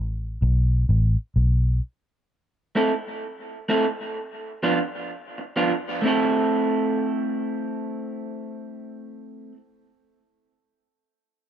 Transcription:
0.00 0.39 A1 medium
0.42 0.86 B1 loud
0.89 1.15 A1 medium
1.36 1.79 B1 medium
2.75 2.90 A3 medium
2.75 2.91 C4 medium
2.75 2.91 E4 medium
2.75 2.91 A4 medium
3.69 3.84 A3 medium
3.69 3.84 C4 medium
3.69 3.84 E4 loud
3.69 3.84 A4 loud
4.63 4.78 F3 medium
4.63 4.78 B3 medium
4.63 4.78 D4 medium
4.63 4.78 F4 medium
5.38 muted clean electric guitar stroke soft
5.56 5.71 F3 medium
5.56 5.72 B3 medium
5.56 5.72 D4 medium
5.56 5.72 F4 medium
6.02 9.52 A3 medium
6.02 9.54 C4 medium
6.02 9.55 E4 medium
6.07 9.57 A4 medium

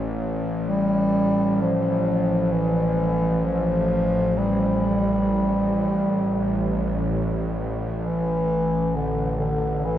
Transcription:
0.00 9.98 A1 medium
0.67 1.63 G3 loud
1.61 2.54 F3 medium
2.52 3.45 E3 loud
3.45 4.38 F3 medium
4.37 7.13 G3 medium
8.04 8.96 E3 loud
8.95 9.39 D3 medium
9.39 9.87 D3 medium
9.85 9.98 E3 loud

